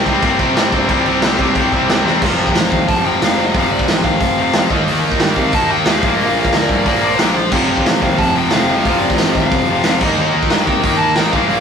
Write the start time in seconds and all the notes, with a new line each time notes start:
Already playing: C3 G3 C4
0.06 C2 C3 G3 C4, kick, crash
0.22 A#2 C3 G3 C4, kick, crash
0.39 C3 G3 C4, kick, crash
0.57 G2 C3 G3 C4, snare, crash
0.72 G2 C3 G3 C4, kick, crash
0.89 C2 C3 G3 C4, kick, crash
1.06 C2 C3 G3 C4, crash
1.22 C2 C3 G3 C4, snare, crash
1.39 C2 C3 G3 C4, kick, crash
1.55 C2 C3 G3 C4, kick, crash
1.72 C2 C3 G3 C4, kick, crash
1.89 C2 C3 G3 C4, snare, crash
2.05 E2 C3 G3 C4, snare
2.22 F1 F2 C3 F3, kick, crash
2.40 F1
2.47 kick
2.55 A1, snare, open hi-hat
2.72 D#2 F5, kick
2.88 F1 A5, kick, open hi-hat
3.05 F2 C3 F3 G5
3.22 F1 F2 C3 F3 F5, snare, open hi-hat
3.37 F2 C3 F3
3.46 D#5
3.54 F1 F2 C3 F3 F5, kick, open hi-hat
3.71 F1 D5
3.79 kick
3.87 A1 D#5, snare, open hi-hat
4.04 D#2 F5, kick
4.21 F1, kick, open hi-hat
4.38 F2 C3 F3
4.53 F2 C3 F3, snare, open hi-hat
4.70 D#2 D#3 A#3 D#4, kick
4.88 D#2, open hi-hat
5.05 D#2
5.12 kick
5.19 G2, snare, open hi-hat
5.36 C3 F5, kick
5.52 D#2 D#3 A#3 D#4 A5, kick, open hi-hat
5.71 D#3 A#3 D#4 G5
5.85 D#2 D#3 A#3 D#4, snare, open hi-hat
5.91 F5
6.03 A#1 A#2 F3 A#3, kick
6.15 D#5
6.20 A#1, open hi-hat
6.25 F5
6.36 A#1 F5
6.45 kick
6.52 D2, snare, open hi-hat
6.58 D5
6.69 G2, kick
6.86 A#1 A#2 F3 A#3, kick, open hi-hat
7.02 A#2 F3 A#3
7.19 A#1 A#2 F3 A#3, snare, open hi-hat
7.51 F1 F2 C3 F3, kick, crash
7.70 F1
7.77 kick
7.86 A1, snare, open hi-hat
8.02 D#2 F5, kick
8.17 F1 A5, kick, open hi-hat
8.36 F2 C3 F3 G5
8.50 F1 F2 C3 F5, snare, open hi-hat
8.55 F3
8.68 F2 C3 F3
8.75 D#5
8.82 F5, kick, open hi-hat
8.86 F1 F2 C3 F3
8.98 F1 D5
9.10 kick
9.16 A1 D#5, snare, open hi-hat
9.33 D#2 F5, kick
9.52 F1, kick, open hi-hat
9.70 F2 C3 F3
9.84 F1 F2, snare, open hi-hat
9.88 C3 F3
10.01 D#2 D#3 A#3 D#4, kick, crash
10.19 D#2
10.34 D#2
10.43 kick
10.50 G2, snare, open hi-hat
10.67 C3 G5, kick
10.83 D#2 D#3 A#3 D#4, kick, open hi-hat
10.98 D#4 A5
11.02 D#3 A#3
11.15 A1 D#3 A#3 G5, snare, open hi-hat
11.20 D#4
11.32 A#1 A#2 F3 A#3 F5, kick
11.49 A#1 F5, open hi-hat